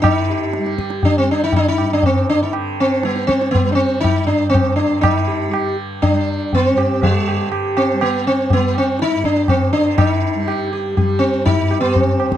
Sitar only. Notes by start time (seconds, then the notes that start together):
0.02 D4
0.13 D#4
0.30 G4
0.78 G4
1.05 D4
1.18 C4
1.31 D4
1.44 D#4
1.56 D4
1.68 D#4
1.93 D4
2.06 C4
2.29 D4
2.43 D#4
2.80 C4
3.05 B3
3.27 C4
3.51 B3
3.72 C4 D4
4.00 D#4
4.27 D4
4.50 C4
4.76 D4
5.01 D4
5.12 D#4
5.27 G4
5.51 G4
6.02 D4
6.54 B3
6.67 C4
6.78 G4
7.03 F#3
7.15 G3
7.28 G4
7.52 G4
7.77 C4
8.02 B3
8.27 C4
8.53 B3
8.78 C4
9.02 D#4
9.25 D4
9.49 C4
9.73 D4
9.98 D4
10.09 D#4
10.47 G4
10.73 G4
10.97 G4
11.19 C4
11.46 D#4
11.70 G4
11.80 B3
11.98 C4